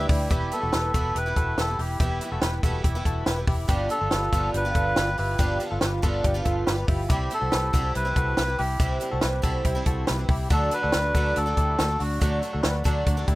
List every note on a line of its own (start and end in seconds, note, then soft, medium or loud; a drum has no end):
0.00 0.30 G3 medium
0.00 0.31 D4 medium
0.00 0.32 E4 medium
0.00 3.40 B4 medium
0.09 0.27 D2 medium
0.09 0.30 E4 medium
0.09 0.29 G4 medium
0.09 kick loud
0.09 open hi-hat medium
0.30 0.48 E1 medium
0.30 0.50 E3 medium
0.30 0.52 G3 medium
0.30 0.52 B3 medium
0.30 0.61 E4 medium
0.30 0.52 E4 medium
0.30 0.60 G4 medium
0.30 0.53 G4 medium
0.30 kick loud
0.30 closed hi-hat medium
0.52 0.93 E3 medium
0.52 0.94 G3 medium
0.52 0.95 B3 medium
0.52 0.95 E4 medium
0.52 1.17 A4 medium
0.52 closed hi-hat medium
0.62 0.71 E1 medium
0.62 0.73 F#4 medium
0.62 0.73 A4 medium
0.73 0.91 E1 medium
0.73 0.94 G4 medium
0.73 0.94 B4 medium
0.73 snare loud
0.73 closed hi-hat medium
0.94 1.11 E1 medium
0.94 1.26 E3 medium
0.94 1.26 G3 medium
0.94 1.26 B3 medium
0.94 1.25 E4 medium
0.94 1.15 F#4 medium
0.94 1.15 A4 medium
0.94 kick medium
0.94 closed hi-hat medium
1.15 1.33 E1 medium
1.15 1.36 E4 medium
1.15 1.36 G4 medium
1.15 1.60 B4 loud
1.15 closed hi-hat medium
1.26 1.69 E3 medium
1.26 1.71 G3 medium
1.26 1.70 B3 medium
1.26 1.67 E4 medium
1.36 1.54 E1 medium
1.36 1.58 F#4 soft
1.36 1.58 A4 medium
1.36 kick medium
1.36 closed hi-hat medium
1.58 1.75 E1 medium
1.58 1.78 G4 medium
1.58 1.80 A4 medium
1.58 1.79 B4 medium
1.58 snare medium
1.58 closed hi-hat medium
1.68 2.00 G3 soft
1.68 2.01 B3 soft
1.68 2.00 E4 medium
1.79 1.96 E1 medium
1.79 1.99 E4 medium
1.79 1.99 G4 medium
1.79 2.19 G4 medium
1.79 open hi-hat medium
2.00 2.17 E1 loud
2.00 2.20 E3 medium
2.00 2.21 G3 medium
2.00 2.22 B3 medium
2.00 2.30 E4 medium
2.00 2.23 E4 medium
2.00 2.30 G4 medium
2.00 kick loud
2.00 closed hi-hat medium
2.21 2.63 E3 medium
2.21 2.64 G3 medium
2.21 2.65 B3 medium
2.21 2.64 E4 medium
2.21 closed hi-hat medium
2.32 2.40 E1 medium
2.32 2.43 F#4 medium
2.32 2.42 A4 medium
2.42 2.59 E1 medium
2.42 2.64 G4 medium
2.42 2.63 B4 medium
2.42 snare loud
2.42 closed hi-hat medium
2.63 2.81 E1 medium
2.63 2.95 E3 medium
2.63 2.95 G3 medium
2.63 2.95 B3 medium
2.63 2.94 E4 medium
2.63 2.83 F#4 medium
2.63 2.84 A4 medium
2.63 kick medium
2.63 closed hi-hat medium
2.84 3.02 E1 medium
2.84 3.05 E4 medium
2.84 3.05 G4 medium
2.84 kick medium
2.84 closed hi-hat medium
2.95 3.39 E3 medium
2.95 3.39 G3 medium
2.95 3.38 B3 medium
2.95 3.35 E4 medium
3.05 3.23 E1 medium
3.05 3.27 F#4 medium
3.05 3.26 A4 medium
3.05 kick medium
3.05 closed hi-hat medium
3.26 3.45 E1 loud
3.26 3.46 G4 medium
3.26 3.47 B4 medium
3.26 snare loud
3.26 closed hi-hat medium
3.36 3.69 G3 soft
3.36 3.68 B3 soft
3.36 3.69 E4 medium
3.47 3.65 E1 medium
3.47 3.69 E4 medium
3.47 3.67 G4 medium
3.47 kick loud
3.47 open hi-hat medium
3.68 3.87 G1 loud
3.68 3.90 G2 medium
3.68 3.88 D3 medium
3.68 3.89 F3 medium
3.68 3.90 B3 medium
3.68 3.99 D4 medium
3.68 3.91 F4 medium
3.68 3.99 G4 medium
3.68 3.89 G4 medium
3.68 kick loud
3.68 closed hi-hat medium
3.89 4.32 D3 medium
3.89 4.33 F3 medium
3.89 4.33 B3 medium
3.89 4.33 F4 medium
3.89 4.50 A4 medium
3.89 closed hi-hat medium
4.01 4.10 G1 medium
4.01 4.12 F4 medium
4.01 4.11 A4 medium
4.11 4.29 G1 loud
4.11 4.32 G4 medium
4.11 4.32 B4 medium
4.11 snare loud
4.11 closed hi-hat medium
4.32 4.50 G1 loud
4.32 4.65 G2 medium
4.32 4.65 D3 medium
4.32 4.65 F3 medium
4.32 4.65 B3 medium
4.32 4.53 F4 medium
4.32 4.64 F4 medium
4.32 4.54 A4 medium
4.32 kick medium
4.32 closed hi-hat medium
4.54 4.72 G1 loud
4.54 4.76 D4 medium
4.54 4.75 G4 medium
4.54 5.17 B4 loud
4.54 closed hi-hat medium
4.65 5.09 G2 soft
4.65 5.08 D3 medium
4.65 5.08 F3 medium
4.65 5.08 B3 medium
4.65 5.06 F4 medium
4.75 4.93 G1 medium
4.75 4.97 F4 soft
4.75 4.96 A4 medium
4.75 kick medium
4.75 closed hi-hat medium
4.96 5.14 G1 medium
4.96 5.17 G4 medium
4.96 5.18 B4 medium
4.96 snare loud
4.96 closed hi-hat medium
5.07 5.38 F3 soft
5.07 5.39 B3 soft
5.07 5.39 F4 soft
5.18 5.36 G1 medium
5.18 5.40 E4 medium
5.18 5.38 G4 medium
5.18 5.58 B4 medium
5.18 open hi-hat medium
5.38 5.57 G1 medium
5.38 5.60 G2 medium
5.38 5.58 D3 medium
5.38 5.59 F3 medium
5.38 5.60 B3 medium
5.38 5.70 D4 medium
5.38 5.61 F4 medium
5.38 5.69 G4 medium
5.38 kick loud
5.38 closed hi-hat medium
5.60 6.02 D3 medium
5.60 6.02 F3 medium
5.60 6.03 B3 medium
5.60 6.03 F4 medium
5.60 closed hi-hat medium
5.71 5.80 G1 medium
5.71 5.82 F4 medium
5.71 5.81 A4 medium
5.81 6.00 G1 medium
5.81 6.03 G4 medium
5.81 6.03 B4 medium
5.81 snare loud
5.81 closed hi-hat medium
6.02 6.21 G1 medium
6.02 6.35 G2 medium
6.02 6.35 D3 medium
6.02 6.34 F3 medium
6.02 6.34 B3 medium
6.02 6.23 F4 medium
6.02 6.33 F4 medium
6.02 6.24 A4 medium
6.02 kick medium
6.02 closed hi-hat medium
6.24 6.42 G1 loud
6.24 6.46 D4 medium
6.24 6.45 G4 medium
6.24 kick medium
6.24 closed hi-hat medium
6.34 6.78 G2 medium
6.34 6.78 D3 medium
6.34 6.78 F3 medium
6.34 6.77 B3 medium
6.34 6.76 F4 medium
6.45 6.63 G1 medium
6.45 6.67 F4 soft
6.45 6.66 A4 medium
6.45 kick medium
6.45 closed hi-hat medium
6.67 6.85 G1 loud
6.67 6.86 G4 medium
6.67 6.88 B4 medium
6.67 snare loud
6.67 closed hi-hat medium
6.77 7.10 F3 soft
6.77 7.10 B3 soft
6.77 7.09 F4 medium
6.87 7.06 G1 medium
6.87 7.08 E4 medium
6.87 7.08 G4 medium
6.87 kick loud
6.87 open hi-hat medium
7.09 7.27 C2 loud
7.09 7.29 C3 medium
7.09 7.30 G3 medium
7.09 7.31 C4 medium
7.09 7.40 E4 medium
7.09 7.32 E4 medium
7.09 7.39 G4 medium
7.09 7.33 G4 medium
7.09 kick loud
7.09 closed hi-hat medium
7.30 7.72 C3 medium
7.30 7.73 G3 medium
7.30 7.73 C4 medium
7.30 7.74 E4 medium
7.30 7.92 A4 medium
7.30 closed hi-hat medium
7.41 7.50 C2 medium
7.41 7.52 F#4 medium
7.41 7.51 A4 medium
7.52 7.70 C2 medium
7.52 7.74 G4 medium
7.52 7.72 B4 medium
7.52 snare loud
7.52 closed hi-hat medium
7.73 7.91 C2 medium
7.73 8.05 C3 medium
7.73 8.05 G3 medium
7.73 8.04 C4 medium
7.73 8.04 E4 medium
7.73 7.94 F#4 medium
7.73 7.94 A4 medium
7.73 kick medium
7.73 closed hi-hat medium
7.95 8.13 C2 loud
7.95 8.15 E4 medium
7.95 8.16 G4 medium
7.95 8.61 B4 loud
7.95 closed hi-hat medium
8.05 8.49 C3 medium
8.05 8.49 G3 medium
8.05 8.47 C4 medium
8.05 8.46 E4 medium
8.16 8.34 C2 medium
8.16 8.37 F#4 medium
8.16 8.37 A4 medium
8.16 kick medium
8.16 closed hi-hat medium
8.37 8.55 C2 loud
8.37 8.57 G4 medium
8.37 8.58 B4 medium
8.37 snare loud
8.37 closed hi-hat medium
8.47 8.80 G3 soft
8.47 8.80 C4 soft
8.47 8.80 E4 medium
8.58 8.77 C2 medium
8.58 8.79 E4 soft
8.58 8.98 G4 medium
8.58 8.78 G4 medium
8.58 open hi-hat medium
8.79 8.98 C2 loud
8.79 8.99 C3 medium
8.79 9.00 G3 medium
8.79 9.01 C4 medium
8.79 9.10 E4 medium
8.79 9.02 E4 medium
8.79 9.10 G4 medium
8.79 kick loud
8.79 closed hi-hat medium
9.00 9.41 C3 medium
9.00 9.42 G3 medium
9.00 9.42 C4 medium
9.00 9.43 E4 medium
9.00 closed hi-hat medium
9.12 9.21 C2 medium
9.12 9.23 F#4 medium
9.12 9.22 A4 medium
9.21 9.41 C2 medium
9.21 9.44 G4 medium
9.21 9.43 B4 medium
9.21 snare loud
9.21 closed hi-hat medium
9.42 9.61 C2 medium
9.42 9.75 C3 medium
9.42 9.75 G3 medium
9.42 9.75 C4 medium
9.42 9.74 E4 medium
9.42 9.64 F#4 medium
9.42 9.65 A4 medium
9.42 kick medium
9.42 closed hi-hat medium
9.65 9.83 C2 medium
9.65 9.86 E4 medium
9.65 9.86 G4 medium
9.65 kick medium
9.65 closed hi-hat medium
9.75 10.19 C3 medium
9.75 10.19 G3 medium
9.75 10.18 C4 medium
9.75 10.17 E4 medium
9.86 10.04 C2 loud
9.86 10.08 F#4 medium
9.86 10.07 A4 medium
9.86 kick medium
9.86 closed hi-hat medium
10.07 10.26 C2 medium
10.07 10.28 G4 medium
10.07 10.29 B4 medium
10.07 snare loud
10.07 closed hi-hat medium
10.18 10.50 G3 soft
10.18 10.51 C4 medium
10.18 10.50 E4 medium
10.29 10.47 C2 medium
10.29 10.51 E4 medium
10.29 10.50 G4 medium
10.29 kick loud
10.29 open hi-hat medium
10.50 10.68 D2 medium
10.50 10.70 D3 medium
10.50 10.71 F#3 medium
10.50 10.72 A3 medium
10.50 10.81 D4 medium
10.50 10.73 D4 medium
10.50 10.81 F#4 medium
10.50 10.74 A4 loud
10.50 kick loud
10.50 closed hi-hat medium
10.71 11.14 D3 medium
10.71 11.16 A3 medium
10.71 11.16 D4 medium
10.71 11.39 B4 loud
10.71 closed hi-hat medium
10.83 10.92 D2 medium
10.83 10.93 F#4 medium
10.83 10.93 A4 medium
10.92 11.11 D2 medium
10.92 11.14 F#4 medium
10.92 11.14 B4 medium
10.92 snare loud
10.92 closed hi-hat medium
11.14 11.32 D2 loud
11.14 11.47 D3 medium
11.14 11.46 F#3 medium
11.14 11.46 A3 medium
11.14 11.45 D4 medium
11.14 11.35 F#4 medium
11.14 11.36 A4 medium
11.14 kick medium
11.14 closed hi-hat medium
11.36 11.54 D2 medium
11.36 11.57 D4 medium
11.36 11.56 F#4 medium
11.36 12.02 A4 medium
11.36 closed hi-hat medium
11.46 11.90 D3 medium
11.46 11.90 F#3 medium
11.46 11.90 A3 medium
11.46 11.88 D4 medium
11.57 11.75 D2 medium
11.57 11.78 E4 medium
11.57 11.78 G4 medium
11.57 kick medium
11.57 closed hi-hat medium
11.78 11.97 D2 medium
11.78 11.98 F#4 medium
11.78 12.00 A4 medium
11.78 snare loud
11.78 closed hi-hat medium
11.89 12.20 F#3 soft
11.89 12.21 A3 soft
11.89 12.21 D4 soft
12.00 12.18 D2 medium
12.00 12.20 D4 medium
12.00 12.19 F#4 medium
12.00 12.40 F#4 medium
12.00 open hi-hat medium
12.21 12.39 D2 loud
12.21 12.41 D3 medium
12.21 12.42 F#3 medium
12.21 12.43 A3 medium
12.21 12.52 D4 medium
12.21 12.43 D4 medium
12.21 12.51 F#4 medium
12.21 kick loud
12.21 closed hi-hat medium
12.42 12.83 D3 medium
12.42 12.84 F#3 medium
12.42 12.85 A3 medium
12.42 12.85 D4 medium
12.42 closed hi-hat medium
12.53 12.63 D2 medium
12.53 12.63 F#4 medium
12.53 12.62 A4 medium
12.63 12.82 D2 medium
12.63 12.85 F#4 medium
12.63 12.85 B4 medium
12.63 snare loud
12.63 closed hi-hat medium
12.84 13.03 D2 medium
12.84 13.17 D3 medium
12.84 13.17 F#3 medium
12.84 13.16 A3 medium
12.84 13.16 D4 medium
12.84 13.05 F#4 medium
12.84 13.07 A4 medium
12.84 kick medium
12.84 closed hi-hat medium
13.07 13.24 D2 medium
13.07 13.28 D4 medium
13.07 13.27 F#4 medium
13.07 kick medium
13.07 closed hi-hat medium
13.17 13.35 D3 medium
13.17 13.35 F#3 medium
13.17 13.35 A3 medium
13.17 13.35 D4 medium
13.28 13.35 D2 medium
13.28 13.35 E4 medium
13.28 13.35 G4 medium
13.28 kick medium
13.28 closed hi-hat medium